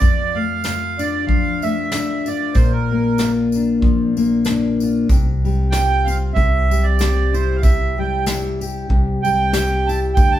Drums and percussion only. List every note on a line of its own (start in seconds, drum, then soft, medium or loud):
0.00 kick medium
0.00 tambourine medium
0.64 snare medium
0.64 tambourine medium
0.99 tambourine medium
1.29 kick medium
1.62 tambourine medium
1.92 snare medium
1.92 tambourine medium
2.26 tambourine medium
2.55 kick medium
2.55 tambourine medium
3.18 snare medium
3.18 tambourine medium
3.52 tambourine medium
3.82 kick medium
4.17 tambourine medium
4.45 snare medium
4.45 tambourine medium
4.80 tambourine medium
5.09 kick medium
5.09 tambourine medium
5.45 tambourine soft
5.72 snare medium
5.72 tambourine medium
6.08 tambourine medium
6.36 kick medium
6.36 tambourine soft
6.71 tambourine medium
6.99 snare medium
6.99 tambourine medium
7.34 tambourine medium
7.63 kick medium
7.63 tambourine medium
8.26 snare medium
8.26 tambourine medium
8.61 tambourine medium
8.90 kick medium
9.25 tambourine medium
9.53 snare medium
9.53 tambourine medium
9.89 tambourine medium
10.17 kick medium
10.17 tambourine medium